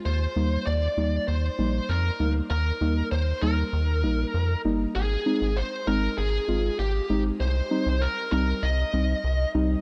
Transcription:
<<
  \new Staff \with { instrumentName = "Lead electric guitar" } { \time 4/4 \key ees \major \tempo 4 = 98 c''4 d''4 c''4 bes'8. r16 | bes'4 c''8 bes'2 r8 | aes'4 c''8 bes'8 aes'4 g'8. r16 | c''4 bes'8 bes'8 ees''4. r8 | }
  \new Staff \with { instrumentName = "Synth keys" } { \time 4/4 \key ees \major r8 <g bes ees'>8 r8 <g bes ees'>8 r8 <g bes ees'>8 r8 <g bes ees'>8 | r8 <g bes ees'>8 r8 <g bes ees'>8 r8 <g bes ees'>8 r8 <g bes ees'>8 | r8 <aes c' ees'>8 r8 <aes c' ees'>8 r8 <aes c' f'>8 r8 <aes c' ees'>8 | r8 <g c' ees'>8 r8 <g c' ees'>8 r8 <g c' ees'>8 r8 <g c' ees'>8 | }
  \new Staff \with { instrumentName = "Analog synth bass" } { \clef bass \time 4/4 \key ees \major ees,8 ees,8 ees,8 ees,8 ees,8 bes,,8 f,8 d,8 | ees,8 ees,8 ees,8 ees,8 ees,8 bes,,8 f,8 g,,8 | aes,,8 r16 aes,,8 r16 aes,,8 aes,,8 aes,,8 aes,,8 aes,,8 | c,8 r16 c,8 r16 c,8 c,8 c,8 c,8 c,8 | }
>>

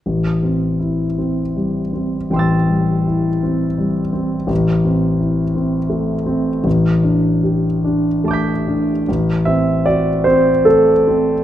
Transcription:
\new Staff \with { instrumentName = "Grand piano" } { \time 6/8 \key a \minor \tempo 4. = 53 << { r2. | <g'' c''' e''' a'''>2. | r2. | r2 <a'' d''' g''' b'''>4 |
r8 e''8 d''8 c''8 a'4 | } \\ { a,,8 c'8 e'8 c'8 g8 c'8 | a,,8 g8 e'8 c'8 g8 c'8 | a,,8 c'8 e'8 c'8 a8 c'8 | a,,8 d'8 g'8 d'8 a8 d'8 |
a,,8 c'8 fis'8 c'8 a8 c'8 | } >> }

